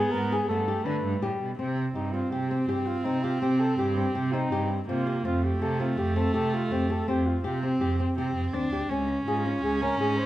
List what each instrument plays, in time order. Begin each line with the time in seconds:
Already playing: cello G#2, viola B3, flugelhorn G#4
0.12 cello G#2, nylon-string guitar B3, flugelhorn A#4
0.32 nylon-string guitar G#4
0.38 flugelhorn G#4
0.48 cello G2, viola A3, nylon-string guitar B3, flugelhorn A4
0.68 nylon-string guitar G4
0.85 cello D3, nylon-string guitar D4, flugelhorn B4
1.04 cello G2
1.22 cello A2, viola G3, nylon-string guitar G4
1.41 cello B2
1.59 cello C3, nylon-string guitar C4, viola C4
1.95 cello G2, flugelhorn D#4, nylon-string guitar G4
2.13 nylon-string guitar C4, flugelhorn F4
2.31 cello C3, flugelhorn G4, nylon-string guitar G4
2.51 nylon-string guitar C4
2.68 cello G2, flugelhorn G4, nylon-string guitar G4
2.87 flugelhorn F4
3.05 cello C3, nylon-string guitar C4, flugelhorn D#4
3.23 flugelhorn F4, nylon-string guitar G4
3.41 cello C3, nylon-string guitar C4, flugelhorn G4
3.60 flugelhorn A4
3.78 cello G2, flugelhorn G4, nylon-string guitar G4
3.97 nylon-string guitar C4
4.15 cello C3, nylon-string guitar G4
4.33 nylon-string guitar C4, flugelhorn D#4
4.52 cello G2, nylon-string guitar G4
4.88 cello C3, viola A#3, nylon-string guitar C4, flugelhorn F4
5.07 nylon-string guitar G4
5.24 cello F2, viola A3, nylon-string guitar C4, flugelhorn F4
5.44 flugelhorn G4
5.61 cello C3, nylon-string guitar G4, flugelhorn A4
5.80 nylon-string guitar C4, flugelhorn F4
5.97 cello F2, nylon-string guitar G4, flugelhorn G4
6.16 nylon-string guitar C4, flugelhorn A4
6.34 cello C3, nylon-string guitar G4, flugelhorn A4
6.54 flugelhorn F4
6.71 cello F2, nylon-string guitar C4, flugelhorn G4
6.90 nylon-string guitar G4, flugelhorn A4
7.08 cello F2, nylon-string guitar C4, flugelhorn G4
7.27 flugelhorn F4
7.44 cello C3, viola C4, flugelhorn F4, nylon-string guitar G4
7.63 nylon-string guitar C4, flugelhorn G4
7.80 cello F2, nylon-string guitar G4
8.00 nylon-string guitar C4
8.17 cello C3, viola C4, nylon-string guitar G4
8.35 cello F2
8.53 cello D#2, nylon-string guitar C4, viola D4
8.71 cello D2, nylon-string guitar G4
8.90 cello C#2, viola C#4, nylon-string guitar C#4
9.26 cello G#2, flugelhorn F4, nylon-string guitar G#4
9.46 nylon-string guitar C#4
9.63 cello C#2, flugelhorn G#4, nylon-string guitar G#4
9.82 nylon-string guitar C#4, flugelhorn A#4
9.99 cello G#2, flugelhorn G#4, nylon-string guitar G#4
10.18 flugelhorn C5